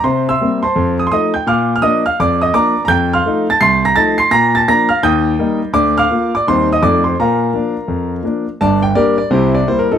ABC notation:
X:1
M:4/4
L:1/16
Q:"Swing" 1/4=168
K:Bb
V:1 name="Grand piano"
[cc']2 [=ec'=e']4 [cac']4 _e' c' [_ee']2 [gg']2 | [fd'f']3 f' [ee']2 [ff']2 [dd']2 [ee']2 [dbd']3 b | [gg']2 [fc'f']4 [aa']2 [c'c'']2 [bb']2 [aa']2 [c'c'']2 | [bb']2 [aa']2 [bb']2 [ff']2 [ge'g']6 z2 |
[dd']2 [fd'f']4 [dd']2 [cc']2 [ee']2 [dd']2 [cc']2 | [Bfb]12 z4 | [da]2 g2 [GBd]2 d2 [=EGc]2 d2 (3c2 B2 [_EFA]2 |]
V:2 name="Grand piano" clef=bass
C,4 [G,B,C]4 F,,4 [F,A,E]4 | B,,4 [F,B,D]4 F,,4 [F,B,D]4 | F,,4 [F,A,E]4 C,,4 [F,A,E]4 | B,,4 [F,B,D]4 E,,4 [G,B,E]4 |
D,,4 [B,F]4 [E,,G,CE]4 [F,,F,A,E]4 | B,,4 [F,B,D]4 F,,4 [F,B,D]4 | [G,,,G,,]4 [G,B,D]4 [C,,C,]4 [G,B,=E]4 |]